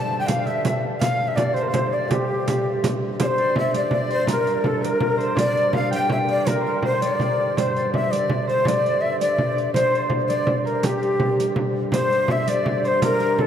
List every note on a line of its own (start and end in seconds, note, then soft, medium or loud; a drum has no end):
0.00 3.18 G2 medium
0.00 3.17 D3 medium
0.00 1.22 D5 medium
0.00 0.34 E5 medium
0.00 0.19 G5 medium
0.00 0.17 A5 loud
0.00 0.22 A5 medium
0.00 1.37 A5 medium
0.19 1.74 G5 medium
0.19 0.29 G5 medium
0.19 0.31 G5 medium
0.27 0.48 F5 medium
0.27 0.52 F5 medium
0.27 0.47 F5 medium
0.27 riq medium
0.27 frame drum medium
0.46 1.05 E5 medium
0.46 0.83 E5 medium
0.46 0.64 E5 medium
0.46 riq soft
0.46 frame drum soft
0.65 0.82 E5 medium
0.65 riq medium
0.65 frame drum medium
0.84 frame drum soft
0.99 1.34 F5 medium
0.99 1.29 F5 loud
0.99 1.27 F5 medium
0.99 riq medium
0.99 frame drum medium
1.28 1.38 E5 medium
1.28 3.00 E5 medium
1.35 1.92 D5 medium
1.35 1.56 D5 medium
1.35 1.55 D5 medium
1.35 riq medium
1.35 frame drum medium
1.54 1.69 C5 medium
1.54 1.64 C5 medium
1.54 1.70 C5 medium
1.54 riq soft
1.54 frame drum soft
1.63 1.70 A#4 medium
1.69 1.95 C5 medium
1.69 3.20 C5 medium
1.69 1.91 C5 medium
1.74 riq medium
1.74 frame drum medium
1.92 2.13 D5 medium
1.92 3.38 D5 medium
1.92 2.11 D5 medium
1.92 frame drum soft
2.09 4.45 G4 medium
2.09 3.01 G4 medium
2.09 2.89 G4 medium
2.09 riq medium
2.09 frame drum loud
2.48 riq medium
2.48 frame drum medium
2.84 riq medium
2.84 frame drum loud
3.19 7.56 G2 medium
3.19 7.56 D3 medium
3.19 3.40 C5 medium
3.19 4.10 C5 medium
3.19 riq medium
3.19 frame drum medium
3.23 3.56 C5 loud
3.23 3.28 D5 medium
3.37 3.74 D5 medium
3.37 3.73 D5 medium
3.37 riq soft
3.37 frame drum soft
3.55 5.28 E5 medium
3.55 3.75 E5 loud
3.55 frame drum medium
3.74 3.92 D5 medium
3.74 4.09 D5 medium
3.74 riq medium
3.74 frame drum soft
3.91 5.35 D5 medium
3.91 4.27 D5 medium
3.91 frame drum medium
4.10 4.19 C5 medium
4.10 4.29 C5 loud
4.10 riq soft
4.19 5.17 C5 medium
4.26 4.58 A#4 medium
4.26 riq medium
4.26 frame drum medium
4.31 4.68 A#4 loud
4.31 4.67 A#4 medium
4.47 riq soft
4.47 frame drum soft
4.58 4.69 A#4 medium
4.63 4.87 A4 medium
4.63 4.85 A4 medium
4.63 frame drum medium
4.81 4.93 A#4 medium
4.81 4.88 C5 medium
4.81 riq medium
4.81 frame drum soft
4.86 5.20 A#4 medium
4.86 5.37 A#4 medium
4.94 5.06 A#4 medium
5.00 frame drum medium
5.07 6.46 A#4 medium
5.18 6.61 C5 medium
5.18 5.39 C5 medium
5.18 riq soft
5.35 6.29 D5 medium
5.35 5.76 D5 loud
5.35 5.72 D5 loud
5.35 riq medium
5.35 frame drum medium
5.56 riq soft
5.56 frame drum soft
5.73 7.40 F5 medium
5.73 5.92 F5 medium
5.73 5.92 F5 loud
5.73 frame drum medium
5.91 7.46 G5 loud
5.91 6.44 G5 loud
5.91 6.10 G5 medium
5.91 riq medium
5.91 frame drum soft
6.09 6.18 E5 loud
6.09 frame drum medium
6.28 7.02 D5 medium
6.28 6.50 D5 loud
6.28 riq soft
6.46 6.66 A#4 medium
6.46 6.64 A#4 medium
6.46 6.84 A#4 loud
6.46 riq medium
6.46 frame drum medium
6.61 6.83 C5 medium
6.66 8.78 A#4 medium
6.66 6.86 A#4 medium
6.83 7.57 C5 medium
6.83 7.04 C5 medium
6.83 7.01 C5 loud
6.83 frame drum medium
7.02 7.14 C#5 loud
7.02 7.38 D5 medium
7.02 7.59 D5 medium
7.02 riq soft
7.14 7.58 D5 loud
7.20 riq soft
7.20 frame drum medium
7.38 8.11 D5 medium
7.57 11.93 G2 medium
7.57 11.92 D3 medium
7.57 7.75 C5 medium
7.57 8.47 C5 medium
7.57 7.62 D5 medium
7.57 riq medium
7.57 frame drum medium
7.61 7.94 C5 loud
7.76 7.96 D5 medium
7.76 riq soft
7.76 frame drum soft
7.94 9.01 E5 medium
7.94 8.12 E5 medium
7.94 8.13 E5 medium
7.94 frame drum medium
8.11 8.66 D5 medium
8.11 8.48 D5 medium
8.11 8.46 D5 medium
8.11 riq soft
8.11 frame drum soft
8.29 frame drum medium
8.47 9.73 C5 medium
8.47 8.66 C5 medium
8.47 8.69 C5 loud
8.47 riq soft
8.65 9.20 D5 medium
8.65 9.21 D5 medium
8.65 9.03 D5 loud
8.65 riq medium
8.65 frame drum medium
8.84 riq soft
8.84 frame drum soft
9.01 9.20 E5 loud
9.01 10.74 E5 medium
9.20 9.71 D5 medium
9.20 9.55 D5 medium
9.20 9.56 D5 medium
9.20 riq soft
9.20 frame drum soft
9.38 frame drum medium
9.56 10.28 D5 medium
9.56 riq soft
9.74 9.91 C5 medium
9.74 10.08 C5 medium
9.74 10.09 C5 loud
9.74 riq medium
9.74 frame drum medium
9.91 11.89 C5 medium
9.91 riq soft
9.91 frame drum soft
10.10 frame drum medium
10.28 10.59 D5 medium
10.28 12.14 D5 medium
10.28 10.63 D5 medium
10.28 riq soft
10.28 frame drum soft
10.47 frame drum medium
10.65 12.77 A#4 medium
10.65 10.87 A#4 medium
10.65 riq soft
10.83 13.19 G4 medium
10.83 11.53 G4 medium
10.83 11.58 G4 medium
10.83 riq medium
10.83 frame drum medium
11.03 riq soft
11.20 frame drum medium
11.38 riq medium
11.38 frame drum soft
11.56 frame drum medium
11.92 13.47 G2 medium
11.92 13.47 D3 medium
11.92 12.84 C5 medium
11.92 12.27 C5 medium
11.92 12.33 C5 loud
11.92 riq medium
11.92 frame drum medium
12.10 riq soft
12.10 frame drum soft
12.28 12.50 E5 medium
12.28 13.47 E5 medium
12.28 12.50 E5 loud
12.28 frame drum medium
12.46 12.64 D5 medium
12.46 12.83 D5 medium
12.46 12.89 D5 loud
12.46 riq medium
12.46 frame drum soft
12.64 13.47 D5 medium
12.64 frame drum medium
12.84 13.04 C5 medium
12.84 13.47 C5 medium
12.84 13.03 C5 loud
12.84 riq soft
13.02 13.20 A#4 medium
13.02 13.36 A#4 medium
13.02 13.42 A#4 loud
13.02 riq medium
13.02 frame drum medium
13.20 13.44 A#4 medium
13.20 riq soft
13.20 frame drum soft
13.37 13.47 A4 medium
13.37 13.47 A4 loud
13.37 frame drum medium